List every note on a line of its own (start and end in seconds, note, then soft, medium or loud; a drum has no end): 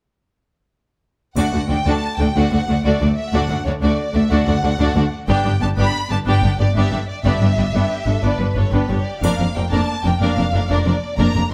1.36 1.43 D2 soft
1.36 1.52 A3 soft
1.36 1.52 D4 soft
1.36 1.52 F#4 soft
1.36 1.52 D5 soft
1.36 1.67 F#5 soft
1.36 triangle soft
1.52 1.59 D2 soft
1.52 1.60 D2 soft
1.52 1.60 A3 soft
1.52 1.60 D4 soft
1.52 1.60 F#4 soft
1.52 1.60 D5 soft
1.69 1.76 D2 soft
1.69 1.77 D2 soft
1.69 1.77 A3 soft
1.69 1.77 D4 soft
1.69 1.76 F#4 soft
1.69 1.76 D5 soft
1.69 1.86 G5 soft
1.86 1.92 D2 soft
1.86 1.93 D2 soft
1.86 2.02 A3 soft
1.86 2.02 D4 soft
1.86 2.02 F#4 soft
1.86 2.01 D5 soft
1.86 2.19 A5 medium
2.18 2.25 D2 soft
2.18 2.26 D2 soft
2.18 2.26 A3 soft
2.18 2.26 D4 soft
2.18 2.27 F#4 soft
2.18 2.26 D5 soft
2.18 2.35 G5 soft
2.35 2.42 D2 soft
2.35 2.51 A3 soft
2.35 2.51 D4 soft
2.35 2.51 F#4 soft
2.35 2.51 D5 soft
2.35 2.84 F#5 soft
2.52 2.58 D2 soft
2.52 2.58 A3 soft
2.52 2.58 D4 soft
2.52 2.59 F#4 soft
2.52 2.60 D5 soft
2.68 2.74 D2 soft
2.68 2.74 A3 soft
2.68 2.75 D4 soft
2.68 2.76 F#4 soft
2.68 2.76 D5 soft
2.84 2.91 D2 soft
2.84 3.00 A3 soft
2.84 3.00 D4 soft
2.84 3.00 F#4 soft
2.84 3.16 D5 soft
2.84 3.00 D5 soft
3.01 3.07 D2 soft
3.01 3.07 A3 soft
3.01 3.07 D4 soft
3.01 3.07 F#4 soft
3.01 3.08 D5 soft
3.17 3.33 E5 soft
3.33 3.40 D2 soft
3.33 3.48 A3 soft
3.33 3.48 D4 soft
3.33 3.49 F#4 soft
3.33 3.49 D5 soft
3.33 3.66 F#5 medium
3.49 3.56 D2 soft
3.49 3.56 A3 soft
3.49 3.56 D4 soft
3.49 3.57 F#4 soft
3.49 3.57 D5 soft
3.65 3.72 D2 soft
3.65 3.73 D2 soft
3.65 3.72 A3 soft
3.65 3.72 D4 soft
3.65 3.73 F#4 soft
3.65 3.72 C#5 soft
3.65 3.73 D5 soft
3.82 3.89 D2 soft
3.82 3.97 A3 soft
3.82 3.97 D4 soft
3.82 3.98 F#4 soft
3.82 3.98 D5 soft
3.82 4.14 D5 soft
4.14 4.22 D2 soft
4.14 4.21 A3 soft
4.14 4.21 D4 soft
4.14 4.21 F#4 soft
4.14 4.21 D5 soft
4.14 4.31 E5 soft
4.30 4.38 D2 soft
4.30 4.38 D2 medium
4.30 4.44 A3 soft
4.30 4.45 D4 medium
4.30 4.46 F#4 soft
4.30 4.46 D5 soft
4.30 5.12 F#5 medium
4.46 4.54 D2 soft
4.46 4.52 A3 soft
4.46 4.53 D4 soft
4.46 4.54 F#4 soft
4.46 4.54 D5 soft
4.63 4.70 D2 soft
4.63 4.69 A3 soft
4.63 4.69 D4 soft
4.63 4.70 F#4 soft
4.63 4.70 D5 soft
4.79 4.86 D2 medium
4.79 4.94 A3 soft
4.79 4.94 D4 soft
4.79 4.95 F#4 soft
4.79 4.95 D5 soft
4.95 5.02 D2 soft
4.95 5.03 D2 soft
4.95 5.02 A3 soft
4.95 5.02 D4 soft
4.95 5.03 F#4 soft
4.95 5.03 D5 soft
5.29 5.35 G1 medium
5.29 5.35 G2 soft
5.29 5.43 B3 soft
5.29 5.43 D4 medium
5.29 5.44 G4 soft
5.29 5.44 D5 medium
5.29 5.59 G5 medium
5.44 5.52 G1 soft
5.44 5.51 G2 soft
5.44 5.51 B3 soft
5.44 5.51 D4 soft
5.44 5.51 G4 soft
5.44 5.52 D5 soft
5.61 5.68 G1 soft
5.61 5.67 G2 soft
5.61 5.68 B3 soft
5.61 5.68 D4 soft
5.61 5.68 G4 soft
5.61 5.68 D5 soft
5.61 5.67 A5 medium
5.78 5.84 G1 soft
5.78 5.84 G2 medium
5.78 5.93 B3 soft
5.78 5.93 D4 soft
5.78 5.93 G4 medium
5.78 5.93 D5 soft
5.78 6.09 B5 medium
6.10 6.17 G1 soft
6.10 6.16 G2 soft
6.10 6.17 B3 soft
6.10 6.18 D4 soft
6.10 6.17 G4 soft
6.10 6.17 D5 soft
6.10 6.17 A5 medium
6.26 6.33 G1 medium
6.26 6.33 G2 soft
6.26 6.41 B3 medium
6.26 6.41 D4 soft
6.26 6.42 G4 soft
6.26 6.42 D5 soft
6.26 6.58 G5 medium
6.43 6.50 G1 soft
6.43 6.50 G2 soft
6.43 6.49 B3 soft
6.43 6.50 D4 soft
6.43 6.50 G4 soft
6.43 6.50 D5 soft
6.59 6.66 G1 soft
6.59 6.66 G2 soft
6.59 6.66 B3 soft
6.59 6.66 D4 soft
6.59 6.66 G4 soft
6.59 6.66 D5 soft
6.59 6.75 D5 medium
6.75 6.82 G1 soft
6.75 6.81 G2 soft
6.75 6.90 B3 soft
6.75 6.90 D4 soft
6.75 6.91 G4 soft
6.75 6.91 D5 soft
6.75 7.08 E5 soft
6.91 6.98 G1 soft
6.91 6.98 G2 soft
6.91 6.98 B3 soft
6.91 6.98 D4 soft
6.91 6.99 G4 soft
6.91 6.99 D5 soft
7.09 7.24 D5 soft
7.25 7.31 G1 soft
7.25 7.31 G2 soft
7.25 7.40 B3 soft
7.25 7.40 D4 soft
7.25 7.40 G4 soft
7.25 7.40 D5 soft
7.25 8.22 E5 medium
7.41 7.48 G1 soft
7.41 7.47 G2 soft
7.41 7.48 B3 soft
7.41 7.48 D4 soft
7.41 7.48 G4 soft
7.41 7.48 D5 soft
7.57 7.64 G1 soft
7.57 7.64 G2 soft
7.57 7.64 B3 soft
7.57 7.65 D4 soft
7.57 7.64 G4 soft
7.57 7.64 D5 soft
7.73 7.80 G1 soft
7.73 7.80 G2 soft
7.73 7.89 B3 soft
7.73 7.89 D4 soft
7.73 8.05 G4 soft
8.06 8.13 G1 soft
8.06 8.13 G2 soft
8.06 8.13 B3 soft
8.06 8.13 D4 soft
8.06 8.23 A4 soft
8.23 8.30 G1 soft
8.23 8.30 G2 soft
8.23 8.38 B3 soft
8.23 8.39 D4 soft
8.23 8.55 B4 soft
8.23 8.40 D5 medium
8.39 8.46 G1 soft
8.39 8.46 G2 soft
8.39 8.47 B3 soft
8.39 8.47 D4 soft
8.39 8.56 B4 soft
8.55 8.63 G1 soft
8.55 8.63 G2 soft
8.55 8.63 B3 soft
8.55 8.63 D4 soft
8.55 8.73 A4 soft
8.55 8.72 C#5 soft
8.72 8.79 G1 soft
8.72 8.79 G2 soft
8.72 8.88 B3 soft
8.72 8.88 D4 soft
8.72 9.22 G4 soft
8.72 8.89 B4 soft
8.89 8.96 G1 soft
8.89 8.96 G2 soft
8.89 8.96 B3 soft
8.89 8.96 D4 soft
8.89 9.06 C#5 soft
9.04 9.22 D5 soft
9.22 9.29 F1 soft
9.22 9.29 F2 soft
9.22 9.37 A#3 soft
9.22 9.37 D4 soft
9.22 9.38 A#4 soft
9.22 9.38 D5 soft
9.22 9.54 F5 soft
9.22 triangle soft
9.39 9.46 F1 soft
9.39 9.46 F2 soft
9.39 9.45 A#3 soft
9.39 9.45 D4 soft
9.39 9.46 A#4 soft
9.39 9.46 D5 soft
9.55 9.63 F1 soft
9.55 9.62 F2 soft
9.55 9.62 A#3 soft
9.55 9.62 D4 soft
9.55 9.62 A#4 soft
9.55 9.62 D5 soft
9.55 9.72 G5 soft
9.71 9.79 F1 soft
9.71 9.78 F2 soft
9.71 9.87 A#3 soft
9.71 9.87 D4 soft
9.71 9.87 A#4 soft
9.71 9.87 D5 soft
9.71 10.04 A5 medium
10.04 10.12 F1 soft
10.04 10.11 F2 soft
10.04 10.11 A#3 soft
10.04 10.11 D4 soft
10.04 10.11 A#4 soft
10.04 10.11 D5 soft
10.04 10.21 G5 soft
10.20 10.28 F1 soft
10.20 10.27 F2 soft
10.20 10.36 A#3 soft
10.20 10.36 D4 soft
10.20 10.37 A#4 soft
10.20 10.37 D5 soft
10.20 10.69 F5 medium
10.37 10.44 F1 soft
10.37 10.44 F2 soft
10.37 10.44 A#3 soft
10.37 10.44 D4 soft
10.37 10.44 A#4 soft
10.37 10.44 D5 soft
10.53 10.61 F1 soft
10.53 10.60 F2 soft
10.53 10.60 A#3 soft
10.53 10.60 D4 soft
10.53 10.61 A#4 soft
10.53 10.61 D5 soft
10.69 10.76 F1 soft
10.69 10.76 F2 soft
10.69 10.85 A#3 soft
10.69 10.85 D4 soft
10.69 10.85 A#4 soft
10.69 11.18 D5 soft
10.69 10.86 D5 soft
10.86 10.93 F1 soft
10.86 10.93 F2 soft
10.86 10.93 A#3 soft
10.86 10.93 D4 soft
10.86 10.94 A#4 soft
10.86 10.94 D5 soft
11.17 11.25 F1 soft
11.17 11.25 F2 soft
11.17 11.34 A#3 soft
11.17 11.34 D4 soft
11.17 11.34 A#4 soft
11.17 11.34 D5 soft
11.17 11.50 A#5 medium
11.35 11.42 F1 soft
11.35 11.41 F2 soft
11.35 11.42 A#3 soft
11.35 11.42 D4 soft
11.35 11.42 A#4 soft
11.35 11.42 D5 soft